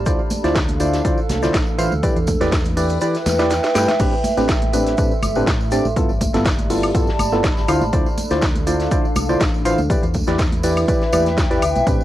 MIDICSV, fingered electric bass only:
0, 0, Header, 1, 2, 480
1, 0, Start_track
1, 0, Tempo, 491803
1, 61, Time_signature, 4, 2, 24, 8
1, 11754, End_track
2, 0, Start_track
2, 0, Title_t, "Fingered electric bass"
2, 0, Program_c, 0, 33
2, 430, Note_on_c, 0, 38, 91
2, 975, Note_off_c, 0, 38, 0
2, 1262, Note_on_c, 0, 36, 81
2, 1444, Note_off_c, 0, 36, 0
2, 1502, Note_on_c, 0, 33, 100
2, 1817, Note_off_c, 0, 33, 0
2, 1871, Note_on_c, 0, 38, 92
2, 1953, Note_off_c, 0, 38, 0
2, 2111, Note_on_c, 0, 40, 97
2, 2283, Note_off_c, 0, 40, 0
2, 2350, Note_on_c, 0, 40, 88
2, 2895, Note_off_c, 0, 40, 0
2, 3181, Note_on_c, 0, 40, 82
2, 3496, Note_off_c, 0, 40, 0
2, 3662, Note_on_c, 0, 43, 73
2, 3757, Note_off_c, 0, 43, 0
2, 3901, Note_on_c, 0, 33, 98
2, 3997, Note_off_c, 0, 33, 0
2, 4270, Note_on_c, 0, 33, 89
2, 4815, Note_off_c, 0, 33, 0
2, 5101, Note_on_c, 0, 31, 82
2, 5283, Note_off_c, 0, 31, 0
2, 5341, Note_on_c, 0, 45, 90
2, 5656, Note_off_c, 0, 45, 0
2, 5710, Note_on_c, 0, 33, 93
2, 5793, Note_off_c, 0, 33, 0
2, 5951, Note_on_c, 0, 31, 101
2, 6123, Note_off_c, 0, 31, 0
2, 6191, Note_on_c, 0, 31, 85
2, 6735, Note_off_c, 0, 31, 0
2, 7022, Note_on_c, 0, 31, 86
2, 7337, Note_off_c, 0, 31, 0
2, 7390, Note_on_c, 0, 31, 91
2, 7472, Note_off_c, 0, 31, 0
2, 7502, Note_on_c, 0, 38, 87
2, 7597, Note_off_c, 0, 38, 0
2, 7631, Note_on_c, 0, 33, 87
2, 7713, Note_off_c, 0, 33, 0
2, 7741, Note_on_c, 0, 38, 104
2, 7837, Note_off_c, 0, 38, 0
2, 8111, Note_on_c, 0, 38, 85
2, 8656, Note_off_c, 0, 38, 0
2, 8942, Note_on_c, 0, 36, 88
2, 9124, Note_off_c, 0, 36, 0
2, 9181, Note_on_c, 0, 33, 97
2, 9496, Note_off_c, 0, 33, 0
2, 9550, Note_on_c, 0, 38, 95
2, 9632, Note_off_c, 0, 38, 0
2, 9790, Note_on_c, 0, 40, 100
2, 9963, Note_off_c, 0, 40, 0
2, 10030, Note_on_c, 0, 40, 86
2, 10575, Note_off_c, 0, 40, 0
2, 10861, Note_on_c, 0, 40, 84
2, 11176, Note_off_c, 0, 40, 0
2, 11231, Note_on_c, 0, 40, 89
2, 11313, Note_off_c, 0, 40, 0
2, 11342, Note_on_c, 0, 38, 88
2, 11437, Note_off_c, 0, 38, 0
2, 11470, Note_on_c, 0, 35, 91
2, 11552, Note_off_c, 0, 35, 0
2, 11581, Note_on_c, 0, 33, 104
2, 11676, Note_off_c, 0, 33, 0
2, 11754, End_track
0, 0, End_of_file